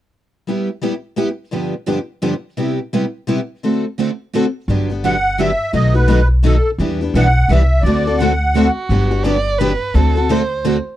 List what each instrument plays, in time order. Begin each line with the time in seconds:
0.47 steel-string acoustic guitar G3 B3 E4 G4
0.82 steel-string acoustic guitar G3 B3 E4 G4
1.16 steel-string acoustic guitar G3 B3 E4 G4
1.51 steel-string acoustic guitar G2 D3 F3 B3 D4 G4
1.87 steel-string acoustic guitar G2 D3 F3 B3 D4 G4
2.22 steel-string acoustic guitar G2 D3 F3 B3 D4 G4
2.57 steel-string acoustic guitar C3 G3 B3 E4 G4
2.93 steel-string acoustic guitar C3 G3 B3 E4 G4
3.27 steel-string acoustic guitar C3 G3 B3 E4 G4
3.63 steel-string acoustic guitar D3 A3 C4 F#4 A4
3.99 steel-string acoustic guitar D3 A3 C4 F#4 A4
4.34 steel-string acoustic guitar D3 A3 C4 F#4 A4
4.68 upright bass G1, steel-string acoustic guitar D3 F#3 B3 D4 G4
4.90 steel-string acoustic guitar B3 D4 G4
5.04 steel-string acoustic guitar D3 F#3 B3 D4 G4, accordion F#5
5.39 steel-string acoustic guitar D3 F#3 B3 D4 G4, accordion E5
5.73 upright bass B1, steel-string acoustic guitar B2 D#3 F#3 A3 B3 D#4 F#4 A4, accordion D#5
5.94 steel-string acoustic guitar A3 D#4 F#4, accordion B4
6.08 steel-string acoustic guitar B2 D#3 F#3 A3 B3 D#4 F#4 A4
6.43 steel-string acoustic guitar B2 D#3 F#3 A3 B3 D#4 F#4 A4, accordion A4
6.78 upright bass E2, steel-string acoustic guitar E3 G3 B3 D4 E4 G4 B4
7.01 steel-string acoustic guitar B3 D4 G4
7.14 upright bass B1, steel-string acoustic guitar E3 G3 B3 D4 E4 G4 B4, accordion F#5
7.48 upright bass C2, steel-string acoustic guitar E3 G3 B3 E4 B4, accordion E5
7.53 steel-string acoustic guitar D4 G4
7.82 upright bass D2, accordion D5
7.86 steel-string acoustic guitar D3 A3 C4 F#4 A4
8.07 steel-string acoustic guitar C4 F#4 A4
8.18 steel-string acoustic guitar D3 A3 F#4, accordion F#5
8.22 steel-string acoustic guitar C4 A4
8.56 steel-string acoustic guitar D3 A3 C4 F#4 A4, violin F#4
8.89 upright bass G1, steel-string acoustic guitar D3 F#3 B3 D4 G4
9.11 steel-string acoustic guitar B3 D4 G4
9.24 steel-string acoustic guitar D3 F#3 B3 D4 G4, violin D5
9.58 steel-string acoustic guitar D3 F#3 B3 D4 G4, violin B4
9.94 upright bass D2, steel-string acoustic guitar D3 A3 C4 F#4 A4, violin A4
10.15 steel-string acoustic guitar C4 F#4 A4
10.29 steel-string acoustic guitar D3 A3 C4 F#4 A4, violin C5
10.65 steel-string acoustic guitar D3 A3 C4 F#4 A4